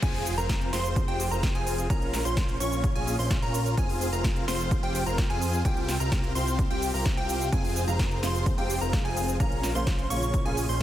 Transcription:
0.03 F1 F3 C4 F4 G#4 C5 G#5, kick, closed hi-hat, crash, impact, shaker
0.14 open hi-hat
0.26 open hi-hat, shaker
0.38 F1 C4 F4 A#4 A#5, closed hi-hat, shaker
0.49 kick, snare, closed hi-hat, shaker
0.61 closed hi-hat
0.73 F1 C4 F4 C5 C6, snare, open hi-hat, shaker
0.85 closed hi-hat, shaker
0.96 kick, closed hi-hat, shaker
1.08 F1 C4 F4 G4 G5, closed hi-hat
1.20 open hi-hat, shaker
1.31 F1 C4 F4 A#4 A#5, closed hi-hat, shaker
1.43 kick, snare, closed hi-hat, shaker
1.55 F1 C4 F4 G#4 G#5, closed hi-hat
1.67 open hi-hat, shaker
1.78 closed hi-hat, shaker
1.90 A#1 A#3 C#4 F4 A#4 A#5, kick, closed hi-hat, shaker
2.02 closed hi-hat
2.13 snare, open hi-hat, shaker
2.25 A#1 C#4 F4 C5 C6, closed hi-hat, shaker
2.37 kick, snare, closed hi-hat, shaker
2.49 closed hi-hat
2.60 A#1 C#4 F4 C#5 C#6, open hi-hat, shaker
2.72 closed hi-hat, shaker
2.84 kick, closed hi-hat, shaker
2.95 A#1 C#4 F4 G#4 G#5, closed hi-hat
3.07 open hi-hat, shaker
3.19 A#1 C#4 F4 C5 C6, open hi-hat, shaker
3.31 kick, snare, closed hi-hat, shaker
3.42 A#1 C#4 F4 A#4 A#5, closed hi-hat
3.54 open hi-hat, shaker
3.66 closed hi-hat, shaker
3.78 F1 F3 C4 F4 G#4 C5 G#5, kick, closed hi-hat, shaker
3.89 open hi-hat
4.01 open hi-hat, shaker
4.13 F1 C4 F4 A#4 A#5, closed hi-hat, shaker
4.24 kick, snare, closed hi-hat, shaker
4.36 closed hi-hat
4.48 F1 C4 F4 C5 C6, snare, open hi-hat, shaker
4.60 closed hi-hat, shaker
4.71 kick, closed hi-hat, shaker
4.83 F1 C4 F4 G4 G5, closed hi-hat
4.95 open hi-hat, shaker
5.06 F1 C4 F4 A#4 A#5, closed hi-hat, shaker
5.18 kick, snare, closed hi-hat, shaker
5.30 F2 C4 F4 G#4 G#5, closed hi-hat
5.42 open hi-hat, shaker
5.53 closed hi-hat, shaker
5.65 C2 C3 C4 F4 G4 G5, kick, closed hi-hat, shaker
5.77 closed hi-hat
5.88 snare, open hi-hat, shaker
6.00 C2 C4 F4 A#4 A#5, closed hi-hat, shaker
6.12 kick, snare, closed hi-hat, shaker
6.24 closed hi-hat
6.35 C2 C4 F4 C5 C6, open hi-hat, shaker
6.47 closed hi-hat, shaker
6.59 kick, closed hi-hat, shaker
6.71 C2 C4 F4 G4 G5, closed hi-hat
6.82 open hi-hat, shaker
6.94 C2 C4 F4 A#4 A#5, open hi-hat, shaker
7.06 kick, snare, closed hi-hat, shaker
7.17 C2 C4 F4 G4 G5, closed hi-hat
7.29 open hi-hat, shaker
7.41 closed hi-hat, shaker
7.52 F1 C3 F3 G#3 C4 F4 G#4 C5 G#5, kick, closed hi-hat, shaker
7.64 open hi-hat
7.76 open hi-hat, shaker
7.87 F1 C3 F3 G#3 C4 F4 A#4 A#5, closed hi-hat, shaker
7.99 kick, snare, closed hi-hat, shaker
8.11 closed hi-hat
8.22 F1 C3 F3 G#3 C4 F4 C5 C6, snare, open hi-hat, shaker
8.35 closed hi-hat, shaker
8.46 kick, closed hi-hat, shaker
8.57 F1 C3 F3 G#3 C4 F4 G4 G5, closed hi-hat
8.70 open hi-hat, shaker
8.81 F1 C4 F4 A#4 A#5, closed hi-hat, shaker
8.93 C3 F3 G#3 F4, kick, snare, closed hi-hat, shaker
9.05 F1 C4 F4 G#4 G#5, closed hi-hat
9.17 open hi-hat, shaker
9.28 closed hi-hat, shaker
9.39 A#1 C#3 F3 A#3 C#4 F4 A#4 A#5, kick, closed hi-hat, shaker
9.52 closed hi-hat
9.63 snare, open hi-hat, shaker
9.75 A#1 C#3 F3 A#3 C#4 F4 C5 C6, closed hi-hat, shaker
9.87 kick, snare, closed hi-hat, shaker
9.99 closed hi-hat
10.10 A#1 C#3 F3 A#3 C#4 F4 C#5 C#6, open hi-hat, shaker
10.22 closed hi-hat, shaker
10.34 kick, closed hi-hat, shaker
10.45 A#1 C#3 F3 A#3 C#4 F4 G#4 G#5, closed hi-hat
10.57 open hi-hat, shaker
10.69 A#1 C#4 F4 C5 C6, open hi-hat, shaker

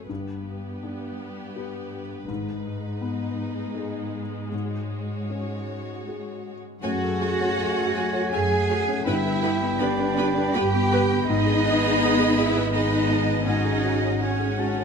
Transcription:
Already playing: A3 F#4 G#4
0.08 G1 G2 B3 G4 B4
0.83 D4
1.56 G4 B4
2.28 G#1 G#2 G#3 D#4
3.01 B3
3.75 D#4 G#4
4.52 G#2 F#4 C#5
5.30 C#4
6.07 F#4 G#4
6.82 F#2 A3 F#4 G#4 C#5 F#5 G#5
7.03 A4
7.20 A3 F#4 G#4 C#5 G#5
7.40 C#4
7.57 F#2 A3 F#4 G#4 C#5 G#5
7.77 A4
7.95 A3 F#4 G#4 C#5 G#5
8.13 C#5
8.32 F#2 A3 F#4 G#4 A4 C#5 G#5
8.50 G#4
8.69 A3 F#4 A4 C#5 G#5
8.88 C#4
9.04 G1 G2 B3 E4 G4 B4 E5 G5 B5
9.25 B4
9.43 B3 G4 B4 G5 B5
9.62 B3
9.79 G1 B3 D4 G4 B4 D5 G5 B5
10.00 B4
10.18 B3 G4 B4 G5 B5
10.38 B4
10.54 G1 B3 G4 B4 G5 B5
10.74 B3
10.91 B3 B4 G5 B5
11.11 B3
11.28 G#1 G#2 B3 D#4 G#4 D#5 B5
11.46 G#4
11.65 D#4
11.83 B3
12.02 D#4
12.20 G#4
12.37 D#4 E4 E5
12.56 B4
12.72 G#3 B3 D#4 G#4 D#5 B5
12.93 D#4
13.09 G#4 A5
13.29 B3
13.46 G#2 G#3 C#4 D#4 F#4 G#4 D#5 F#5 G#5
13.65 G#4
13.84 F#4
14.03 C#4
14.20 G#3 C#4 F#4 C#5 F#5 G#5
14.40 G#4
14.59 F#4 A5
14.79 C#5

